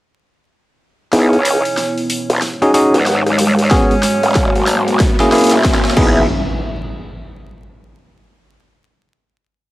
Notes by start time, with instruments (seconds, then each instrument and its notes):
1.13 wobble bass C#2, tine electric piano B3 D#4 E4 G#4, analog synth pad B3 E4 C#5, tenor saxophone C#4, snare, open hi-hat, riser
1.33 open hi-hat
1.45 open hi-hat
1.65 open hi-hat
1.77 snare, open hi-hat
1.98 open hi-hat
2.10 open hi-hat
2.30 wobble bass B1, open hi-hat
2.42 analog synth pad G#3 D#4, cross-stick, snare, open hi-hat
2.62 tine electric piano C#4 D#4 F#4 G#4, open hi-hat
2.74 tine electric piano C#4 D#4 F#4 G#4, open hi-hat
2.94 wobble bass D#2, tenor saxophone B3, open hi-hat
3.06 tenor saxophone B3, snare, open hi-hat
3.26 wobble bass D#2, cross-stick, open hi-hat
3.39 open hi-hat
3.59 open hi-hat
3.71 tine electric piano B3 C#4 F#4 G#4, tenor saxophone C#4, analog synth pad F#4, kick, snare, open hi-hat
3.91 open hi-hat
4.03 snare, open hi-hat
4.23 wobble bass E1, open hi-hat
4.35 kick, snare, open hi-hat
4.55 wobble bass G#1, open hi-hat
4.67 snare, open hi-hat
4.88 open hi-hat
5.00 analog synth pad A#3 E5, kick, snare, open hi-hat
5.20 tine electric piano A#3 C#4 E4 G#4, snare, open hi-hat
5.32 tine electric piano A#3 C#4 E4 G#4, snare, open hi-hat
5.35 open hi-hat
5.38 open hi-hat
5.41 open hi-hat
5.44 open hi-hat
5.47 open hi-hat
5.50 wobble bass A#1, snare, open hi-hat
5.65 kick, snare, open hi-hat
5.75 snare
5.85 snare, open hi-hat
5.91 snare
5.97 wobble bass C#2, tine electric piano B3 D#4 E4 G#4, kick, crash, impact